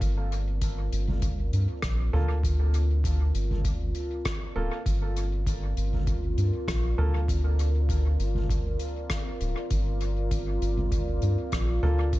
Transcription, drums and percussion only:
0.01 kick loud
0.01 closed hi-hat medium
0.32 closed hi-hat soft
0.61 kick loud
0.61 closed hi-hat medium
0.92 closed hi-hat soft
1.08 mid tom medium
1.22 kick loud
1.22 closed hi-hat medium
1.53 closed hi-hat soft
1.82 kick loud
1.82 cross-stick medium
1.82 closed hi-hat medium
2.14 mid tom medium
2.44 kick loud
2.44 closed hi-hat medium
2.74 closed hi-hat soft
3.04 kick loud
3.04 closed hi-hat medium
3.35 closed hi-hat soft
3.51 mid tom medium
3.65 kick loud
3.65 closed hi-hat medium
3.95 closed hi-hat soft
4.25 kick loud
4.25 cross-stick medium
4.25 closed hi-hat medium
4.86 kick loud
4.86 closed hi-hat medium
5.16 closed hi-hat soft
5.47 kick loud
5.47 closed hi-hat medium
5.77 closed hi-hat soft
5.93 mid tom medium
6.07 kick loud
6.07 closed hi-hat medium
6.38 closed hi-hat soft
6.68 kick loud
6.68 cross-stick medium
6.68 closed hi-hat medium
6.99 mid tom medium
7.28 kick loud
7.28 closed hi-hat medium
7.59 closed hi-hat soft
7.89 kick loud
7.89 closed hi-hat medium
8.20 closed hi-hat soft
8.35 mid tom medium
8.50 kick loud
8.50 closed hi-hat medium
8.79 closed hi-hat soft
9.10 kick loud
9.10 cross-stick medium
9.10 closed hi-hat medium
9.41 closed hi-hat soft
9.70 kick loud
9.70 closed hi-hat medium
10.01 closed hi-hat soft
10.31 kick loud
10.31 closed hi-hat medium
10.62 closed hi-hat soft
10.77 mid tom medium
10.92 kick loud
10.92 closed hi-hat medium
11.22 closed hi-hat soft
11.52 kick loud
11.52 cross-stick medium
11.52 closed hi-hat medium
11.83 mid tom medium
12.13 kick loud
12.13 closed hi-hat medium

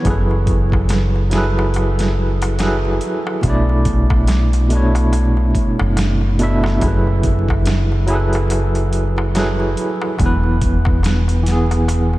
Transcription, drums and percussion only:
0.05 kick loud
0.05 closed hi-hat medium
0.05 darbuka tek medium
0.31 darbuka tek soft
0.47 kick medium
0.47 closed hi-hat medium
0.72 kick medium
0.72 darbuka tek medium
0.89 snare loud
0.89 closed hi-hat medium
0.89 darbuka tek medium
1.16 darbuka tek soft
1.31 snare loud
1.31 closed hi-hat medium
1.59 darbuka tek medium
1.74 closed hi-hat medium
1.74 darbuka tek medium
1.99 snare loud
1.99 closed hi-hat medium
1.99 darbuka tek soft
2.42 closed hi-hat medium
2.42 darbuka tek medium
2.59 snare loud
2.59 closed hi-hat medium
2.59 darbuka tek medium
2.85 darbuka tek soft
3.01 closed hi-hat medium
3.27 darbuka tek medium
3.43 kick loud
3.43 closed hi-hat medium
3.43 darbuka tek medium
3.69 darbuka tek soft
3.85 kick medium
3.85 closed hi-hat medium
4.10 kick medium
4.10 darbuka tek medium
4.27 snare loud
4.27 closed hi-hat medium
4.27 darbuka tek medium
4.53 closed hi-hat soft
4.53 darbuka tek soft
4.70 closed hi-hat medium
4.95 closed hi-hat soft
4.95 darbuka tek medium
5.13 closed hi-hat medium
5.13 darbuka tek medium
5.37 darbuka tek soft
5.55 kick medium
5.55 closed hi-hat medium
5.80 darbuka tek medium
5.97 snare loud
5.97 closed hi-hat medium
5.97 darbuka tek medium
6.21 darbuka tek soft
6.39 closed hi-hat medium
6.64 snare soft
6.64 darbuka tek medium
6.81 kick loud
6.81 closed hi-hat medium
6.81 darbuka tek medium
7.07 darbuka tek soft
7.23 kick medium
7.23 closed hi-hat medium
7.49 kick medium
7.49 darbuka tek medium
7.66 snare loud
7.66 closed hi-hat medium
7.66 darbuka tek medium
7.92 darbuka tek soft
8.08 closed hi-hat medium
8.33 closed hi-hat soft
8.33 darbuka tek medium
8.50 closed hi-hat medium
8.50 darbuka tek medium
8.75 closed hi-hat soft
8.75 darbuka tek soft
8.93 closed hi-hat medium
9.18 darbuka tek medium
9.35 snare loud
9.35 closed hi-hat medium
9.35 darbuka tek medium
9.60 darbuka tek soft
9.77 closed hi-hat medium
10.02 darbuka tek medium
10.18 kick loud
10.18 closed hi-hat medium
10.18 darbuka tek medium
10.44 darbuka tek soft
10.61 kick medium
10.61 closed hi-hat medium
10.85 kick medium
10.85 darbuka tek medium
11.03 snare loud
11.03 closed hi-hat medium
11.03 darbuka tek medium
11.28 closed hi-hat soft
11.28 darbuka tek soft
11.46 snare soft
11.46 closed hi-hat medium
11.71 closed hi-hat soft
11.71 darbuka tek medium
11.88 closed hi-hat medium
11.88 darbuka tek medium
12.13 darbuka tek soft

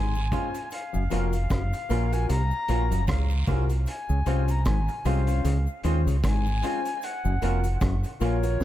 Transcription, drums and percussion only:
0.15 cabasa medium
0.31 kick medium
0.31 closed hi-hat medium
0.31 cabasa medium
0.54 closed hi-hat medium
0.54 cabasa medium
0.71 closed hi-hat medium
0.71 cabasa medium
0.94 cabasa medium
1.10 closed hi-hat medium
1.10 cabasa medium
1.33 closed hi-hat medium
1.33 cabasa medium
1.50 kick loud
1.50 cross-stick loud
1.50 closed hi-hat medium
1.50 cabasa medium
1.73 closed hi-hat medium
1.73 cabasa medium
1.90 closed hi-hat medium
1.90 cabasa medium
2.12 closed hi-hat medium
2.12 cabasa medium
2.29 closed hi-hat loud
2.29 cabasa medium
2.51 cabasa soft
2.68 closed hi-hat medium
2.68 cabasa medium
2.91 closed hi-hat medium
2.91 cabasa medium
3.07 kick loud
3.07 cross-stick loud
3.07 closed hi-hat loud
3.07 cabasa medium
3.07 long guiro medium
3.30 cabasa soft
3.47 kick medium
3.47 closed hi-hat medium
3.47 cabasa medium
3.69 closed hi-hat medium
3.69 cabasa medium
3.86 closed hi-hat medium
3.86 cabasa medium
4.09 cabasa medium
4.26 closed hi-hat medium
4.26 cabasa medium
4.48 closed hi-hat medium
4.48 cabasa medium
4.65 kick loud
4.65 cross-stick loud
4.65 closed hi-hat loud
4.65 cabasa medium
4.88 closed hi-hat medium
4.88 cabasa medium
5.05 closed hi-hat medium
5.05 cabasa medium
5.27 closed hi-hat medium
5.27 cabasa medium
5.44 closed hi-hat medium
5.44 cabasa medium
5.67 cabasa soft
5.83 closed hi-hat medium
5.83 cabasa medium
6.07 closed hi-hat medium
6.07 cabasa medium
6.24 kick loud
6.24 cross-stick loud
6.24 closed hi-hat loud
6.24 cabasa medium
6.24 long guiro medium
6.46 cabasa medium
6.63 closed hi-hat medium
6.63 cabasa soft
6.85 closed hi-hat medium
6.85 cabasa medium
7.02 closed hi-hat medium
7.02 cabasa medium
7.25 cabasa medium
7.42 closed hi-hat medium
7.42 cabasa medium
7.63 closed hi-hat medium
7.63 cabasa medium
7.81 kick loud
7.81 cross-stick loud
7.81 closed hi-hat loud
7.81 cabasa medium
8.03 closed hi-hat medium
8.03 cabasa medium
8.20 closed hi-hat medium
8.20 cabasa medium
8.43 closed hi-hat medium
8.43 cabasa medium
8.61 snare medium
8.61 cabasa medium

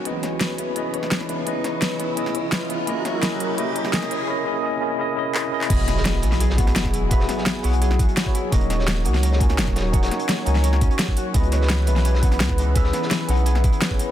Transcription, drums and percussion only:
0.05 closed hi-hat medium
0.23 snare soft
0.23 closed hi-hat medium
0.41 snare loud
0.41 closed hi-hat medium
0.58 closed hi-hat medium
0.76 closed hi-hat medium
0.94 closed hi-hat medium
1.03 snare soft
1.11 snare loud
1.11 closed hi-hat medium
1.20 snare soft
1.29 closed hi-hat medium
1.47 closed hi-hat medium
1.64 snare soft
1.64 closed hi-hat medium
1.82 snare loud
1.82 closed hi-hat medium
2.00 closed hi-hat medium
2.17 closed hi-hat medium
2.26 snare soft
2.35 closed hi-hat medium
2.52 snare loud
2.52 closed hi-hat medium
2.70 closed hi-hat medium
2.87 closed hi-hat loud
3.05 snare soft
3.05 closed hi-hat medium
3.23 snare loud
3.23 closed hi-hat loud
3.40 closed hi-hat medium
3.58 closed hi-hat loud
3.76 closed hi-hat medium
3.85 snare soft
3.93 snare loud
3.93 closed hi-hat loud
4.02 snare soft
4.11 closed hi-hat medium
5.35 clap loud
5.61 clap medium
5.70 kick loud
5.70 closed hi-hat medium
5.70 closed hi-hat loud
5.70 crash loud
5.79 closed hi-hat soft
5.88 snare soft
5.88 closed hi-hat medium
5.97 snare soft
6.05 snare loud
6.05 closed hi-hat medium
6.23 closed hi-hat medium
6.32 snare soft
6.32 closed hi-hat soft
6.40 closed hi-hat medium
6.40 closed hi-hat loud
6.50 snare medium
6.58 kick loud
6.58 closed hi-hat medium
6.67 snare soft
6.67 closed hi-hat soft
6.76 snare loud
6.76 closed hi-hat medium
6.76 closed hi-hat loud
6.85 kick medium
6.85 snare soft
6.93 closed hi-hat medium
7.11 kick loud
7.11 closed hi-hat medium
7.20 snare medium
7.29 snare soft
7.29 closed hi-hat medium
7.38 snare soft
7.46 snare loud
7.46 closed hi-hat medium
7.63 closed hi-hat medium
7.63 open hi-hat medium
7.73 closed hi-hat soft
7.82 closed hi-hat medium
7.91 snare soft
7.99 kick loud
7.99 closed hi-hat medium
8.09 closed hi-hat soft
8.17 snare loud
8.17 closed hi-hat medium
8.17 closed hi-hat loud
8.26 kick medium
8.35 closed hi-hat medium
8.52 kick loud
8.52 closed hi-hat medium
8.61 closed hi-hat soft
8.70 snare soft
8.70 closed hi-hat medium
8.79 snare soft
8.87 snare loud
8.87 closed hi-hat medium
9.05 closed hi-hat medium
9.14 snare soft
9.14 closed hi-hat soft
9.23 closed hi-hat medium
9.32 snare medium
9.40 kick loud
9.40 closed hi-hat medium
9.49 snare soft
9.49 closed hi-hat soft
9.58 snare loud
9.58 closed hi-hat medium
9.67 kick medium
9.67 snare soft
9.76 snare loud
9.76 closed hi-hat medium
9.93 kick loud
9.93 closed hi-hat medium
10.03 snare loud
10.03 closed hi-hat medium
10.11 snare soft
10.11 closed hi-hat medium
10.19 closed hi-hat medium
10.29 snare loud
10.29 closed hi-hat medium
10.46 closed hi-hat medium
10.55 snare soft
10.55 closed hi-hat soft
10.64 closed hi-hat medium
10.73 snare soft
10.81 kick loud
10.81 closed hi-hat medium
10.91 closed hi-hat soft
10.99 snare loud
10.99 closed hi-hat medium
11.08 kick medium
11.17 closed hi-hat medium
11.34 kick loud
11.34 closed hi-hat medium
11.43 closed hi-hat soft
11.52 snare soft
11.52 closed hi-hat medium
11.61 snare soft
11.70 snare loud
11.70 closed hi-hat medium
11.87 closed hi-hat medium
11.96 snare soft
11.96 closed hi-hat soft
12.05 closed hi-hat medium
12.14 snare medium
12.23 kick loud
12.23 closed hi-hat medium
12.31 snare soft
12.31 closed hi-hat soft
12.40 snare loud
12.40 closed hi-hat medium
12.49 kick medium
12.49 snare soft
12.58 closed hi-hat medium
12.76 kick loud
12.76 closed hi-hat medium
12.84 snare medium
12.93 snare soft
12.93 closed hi-hat medium
13.02 snare soft
13.11 snare loud
13.11 closed hi-hat medium
13.29 closed hi-hat medium
13.29 open hi-hat medium
13.37 closed hi-hat soft
13.46 closed hi-hat medium
13.55 snare soft
13.64 kick loud
13.64 closed hi-hat medium
13.73 closed hi-hat soft
13.82 snare loud
13.82 closed hi-hat medium
13.91 kick medium
13.99 closed hi-hat medium

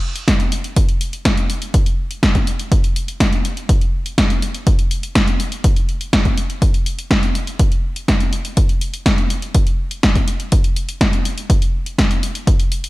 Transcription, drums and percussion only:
0.16 closed hi-hat soft
0.28 kick loud
0.28 snare loud
0.28 closed hi-hat medium
0.40 closed hi-hat soft
0.52 closed hi-hat medium
0.64 closed hi-hat soft
0.76 kick loud
0.76 closed hi-hat medium
0.89 closed hi-hat soft
1.01 closed hi-hat medium
1.13 closed hi-hat soft
1.25 kick loud
1.25 snare loud
1.25 closed hi-hat medium
1.37 closed hi-hat soft
1.50 closed hi-hat medium
1.62 closed hi-hat soft
1.74 kick loud
1.74 closed hi-hat medium
1.86 closed hi-hat soft
2.11 closed hi-hat soft
2.23 kick loud
2.23 snare loud
2.23 closed hi-hat medium
2.35 kick medium
2.35 closed hi-hat soft
2.47 closed hi-hat medium
2.59 closed hi-hat soft
2.72 kick loud
2.72 closed hi-hat medium
2.84 closed hi-hat soft
2.96 closed hi-hat medium
3.08 closed hi-hat soft
3.20 kick loud
3.20 snare loud
3.20 closed hi-hat medium
3.33 closed hi-hat soft
3.45 closed hi-hat medium
3.57 closed hi-hat soft
3.69 kick loud
3.69 closed hi-hat medium
3.81 closed hi-hat soft
4.06 closed hi-hat soft
4.18 kick loud
4.18 snare loud
4.18 closed hi-hat medium
4.30 closed hi-hat soft
4.42 closed hi-hat medium
4.54 closed hi-hat soft
4.67 kick loud
4.67 closed hi-hat medium
4.79 closed hi-hat soft
4.91 closed hi-hat medium
5.03 closed hi-hat soft
5.15 kick loud
5.15 snare loud
5.15 closed hi-hat medium
5.28 closed hi-hat soft
5.40 closed hi-hat medium
5.52 closed hi-hat soft
5.64 kick loud
5.64 closed hi-hat medium
5.76 closed hi-hat soft
5.89 closed hi-hat soft
6.01 closed hi-hat soft
6.13 kick loud
6.13 snare loud
6.13 closed hi-hat medium
6.25 kick medium
6.25 closed hi-hat soft
6.38 closed hi-hat medium
6.50 closed hi-hat soft
6.62 kick loud
6.62 closed hi-hat medium
6.74 closed hi-hat soft
6.86 closed hi-hat medium
6.99 closed hi-hat soft
7.11 kick loud
7.11 snare loud
7.11 closed hi-hat medium
7.23 closed hi-hat soft
7.35 closed hi-hat medium
7.47 closed hi-hat soft
7.59 kick loud
7.59 closed hi-hat medium
7.72 closed hi-hat soft
7.96 closed hi-hat soft
8.08 kick loud
8.08 snare loud
8.08 closed hi-hat medium
8.20 closed hi-hat soft
8.33 closed hi-hat medium
8.45 closed hi-hat soft
8.57 kick loud
8.57 closed hi-hat medium
8.69 closed hi-hat soft
8.81 closed hi-hat medium
8.94 closed hi-hat soft
9.06 kick loud
9.06 snare loud
9.06 closed hi-hat medium
9.18 closed hi-hat soft
9.30 closed hi-hat medium
9.42 closed hi-hat soft
9.55 kick loud
9.55 closed hi-hat medium
9.67 closed hi-hat soft
9.91 closed hi-hat soft
10.03 kick loud
10.03 snare loud
10.03 closed hi-hat medium
10.15 kick medium
10.15 closed hi-hat soft
10.28 closed hi-hat medium
10.40 closed hi-hat soft
10.52 kick loud
10.52 closed hi-hat medium
10.64 closed hi-hat soft
10.76 closed hi-hat medium
10.89 closed hi-hat soft
11.01 kick loud
11.01 snare loud
11.01 closed hi-hat medium
11.13 closed hi-hat soft
11.25 closed hi-hat medium
11.38 closed hi-hat soft
11.50 kick loud
11.50 closed hi-hat medium
11.62 closed hi-hat soft
11.86 closed hi-hat soft
11.98 kick loud
11.98 snare loud
11.98 closed hi-hat medium
12.11 closed hi-hat soft
12.23 closed hi-hat medium
12.35 closed hi-hat soft
12.47 kick loud
12.47 closed hi-hat medium
12.60 closed hi-hat soft
12.72 closed hi-hat medium
12.84 closed hi-hat soft

